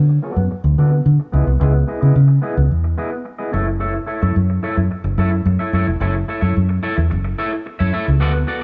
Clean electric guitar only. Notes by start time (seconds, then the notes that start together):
0.09 muted clean electric guitar stroke
0.22 B3 F#4 A4 D5
0.37 muted clean electric guitar stroke
0.51 muted clean electric guitar stroke
0.65 muted clean electric guitar stroke
0.78 B3 F#4 A4 D5
0.92 muted clean electric guitar stroke
1.20 muted clean electric guitar stroke
1.32 B3 E4 G#4 D#5
1.46 muted clean electric guitar stroke
1.60 B3 E4 G#4 D#5
1.74 muted clean electric guitar stroke
1.87 B3 E4 G#4 D#5
2.01 B3 E4 G#4 D#5
2.28 muted clean electric guitar stroke
2.42 B3 E4 G#4 D#5
2.56 muted clean electric guitar stroke
2.84 muted clean electric guitar stroke
2.98 B3 E4 G#4 D#5
3.11 muted clean electric guitar stroke
3.25 muted clean electric guitar stroke
3.38 B3 E4 G#4 D#5
3.52 E4 A4 C#5 E5
3.67 muted clean electric guitar stroke
3.80 E4 A4 C#5 E5
3.95 muted clean electric guitar stroke
4.06 E4 A4 C#5 E5
4.22 E4 A4 C#5 E5
4.50 muted clean electric guitar stroke
4.63 E4 A4 C#5 E5
4.77 muted clean electric guitar stroke
4.91 muted clean electric guitar stroke
5.04 muted clean electric guitar stroke
5.18 E4 A4 C#5 E5
5.32 muted clean electric guitar stroke
5.46 muted clean electric guitar stroke
5.59 E4 A4 C#5 E5
5.73 E4 A4 C#5 E5
5.87 muted clean electric guitar stroke
6.00 E4 A4 C#5 E5
6.15 muted clean electric guitar stroke
6.28 E4 A4 C#5 E5
6.41 E4 A4 C#5 E5
6.69 muted clean electric guitar stroke
6.83 E4 A4 C#5 E5
6.97 muted clean electric guitar stroke
7.10 muted clean electric guitar stroke
7.25 muted clean electric guitar stroke
7.38 E4 A4 C#5 E5
7.53 muted clean electric guitar stroke
7.66 muted clean electric guitar stroke
7.79 E4 A4 C#5 E5
7.93 E4 A4 C#5 E5
8.06 muted clean electric guitar stroke
8.20 B3 F#4 A4 D5
8.33 muted clean electric guitar stroke
8.47 B3 F#4 A4 D5